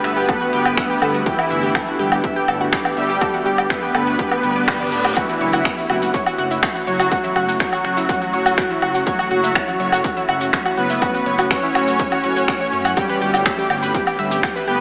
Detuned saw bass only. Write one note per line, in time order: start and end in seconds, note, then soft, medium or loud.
0.04 0.25 G1 medium
0.53 0.74 G1 medium
1.02 1.22 G1 medium
1.51 1.71 G1 loud
2.00 2.20 G1 loud
2.48 2.69 G1 medium
2.97 3.17 G1 medium
3.46 3.66 G1 loud
3.95 4.15 G1 loud
4.43 4.94 G1 medium
4.92 5.13 D1 medium
5.41 5.61 F#1 loud
5.90 6.10 F#1 medium
6.39 6.59 F#1 medium
6.87 7.08 F#1 medium
7.36 7.57 F#1 loud
7.85 8.05 F#1 loud
8.34 8.54 F#1 medium
8.82 9.03 F#1 medium
9.31 9.52 F#1 loud
9.80 10.00 F#1 loud
10.29 10.49 F#1 medium
10.77 10.98 F#1 medium
11.26 11.47 F#1 loud
11.75 11.96 F#1 loud
12.24 12.44 F#1 loud
12.73 12.93 F#2 medium
13.21 13.42 G1 loud
13.70 13.91 G1 loud
14.19 14.39 G1 medium
14.68 14.80 G1 medium